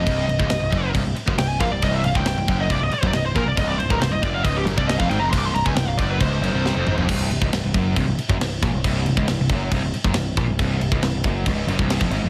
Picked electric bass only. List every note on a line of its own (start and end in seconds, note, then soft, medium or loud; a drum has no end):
0.06 0.27 C1 loud
0.28 0.39 C1 medium
0.39 0.50 C#1 medium
0.50 0.61 C1 medium
0.62 0.72 C1 medium
0.72 0.93 F#1 loud
0.94 1.05 C1 medium
1.05 1.15 C1 medium
1.15 muted picked electric bass stroke soft
1.27 1.37 F#1 loud
1.38 1.59 C1 medium
1.60 1.70 A#1 loud
1.71 1.81 C1 medium
1.82 2.03 C1 loud
2.04 2.14 C1 medium
2.15 2.25 C#1 medium
2.25 2.36 C1 medium
2.37 2.47 C1 medium
2.48 2.69 F#1 loud
2.70 2.80 C1 loud
2.81 2.91 C1 medium
2.92 muted picked electric bass stroke soft
3.03 3.13 F#1 loud
3.14 3.34 C1 medium
3.36 3.45 A#1 loud
3.46 3.56 C1 medium
3.57 3.78 C1 loud
3.80 3.89 C1 medium
3.90 4.00 C#1 medium
4.01 4.12 C1 medium
4.13 4.22 C1 medium
4.22 4.43 F#1 loud
4.44 4.65 C#1 loud
4.67 4.77 F#1 medium
4.78 4.99 C1 loud
5.00 5.09 F1 medium
5.10 5.21 G#1 loud
5.22 5.32 F1 medium
5.32 5.53 C1 loud
5.53 5.64 C1 medium
5.66 5.75 C#1 medium
5.75 5.86 C1 medium
5.87 5.97 C1 medium
5.99 6.19 F#1 loud
6.20 6.41 C#1 loud
6.41 6.52 F#1 medium
6.53 6.74 C1 loud
6.75 6.86 F1 medium
6.87 6.97 G#1 loud
6.97 7.08 F1 loud
7.09 7.29 C1 medium
7.31 7.41 C1 medium
7.41 7.52 C#1 medium
7.52 7.62 C1 medium
7.64 7.74 C1 medium
7.74 7.95 F#1 loud
7.96 8.06 C1 medium
8.07 8.17 C1 medium
8.18 muted picked electric bass stroke soft
8.29 8.39 F#1 loud
8.41 8.61 C1 medium
8.62 8.72 A#1 loud
8.73 8.83 C1 medium
8.84 9.04 C1 loud
9.07 9.16 C1 medium
9.17 9.27 C#1 medium
9.29 9.38 C1 medium
9.39 9.49 C1 medium
9.50 9.70 F#1 loud
9.71 9.82 C1 loud
9.84 9.93 C1 medium
9.94 muted picked electric bass stroke soft
10.05 10.14 F#1 loud
10.14 10.35 C1 medium
10.37 10.47 A#1 loud
10.48 10.58 C1 medium
10.59 10.79 C1 loud
10.80 10.91 C1 medium
10.91 11.02 C#1 medium
11.02 11.12 C1 medium
11.13 11.23 C1 medium
11.24 11.45 F#1 loud
11.46 11.67 C#1 loud
11.67 11.78 F#1 loud
11.79 12.00 C1 loud
12.01 12.10 F1 medium
12.10 12.21 G#1 loud
12.22 12.29 F1 medium